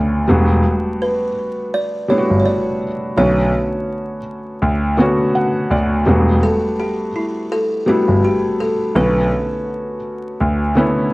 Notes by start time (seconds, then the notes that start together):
Already playing: D2 D3 A3 B3 C#4 A4
0.27 E1 G3 A3 B3 D4 F#4
1.02 B4
1.74 D5
2.08 G3 A3 B3 D4 E4 C#5
2.18 F#4
2.30 G1
2.40 C#5
2.46 D5
3.16 B1 D3 A3 B3 C#4 F#4 C#5
4.62 D2
4.97 D3 A3 B3 C#4 F#4
5.35 F#5
5.70 D2 D5
6.05 E1 G3 A3 B3 D4 F#4
6.43 A4
6.79 G4
7.16 E4
7.52 A4
7.86 G3 A3 B3 D4 E4 F#4
8.08 G1
8.24 G4
8.60 A4
8.95 B1 D3 A3 B3 C#4 F#4 B4
10.40 D2
10.75 D3 A3 B3 C#4 E4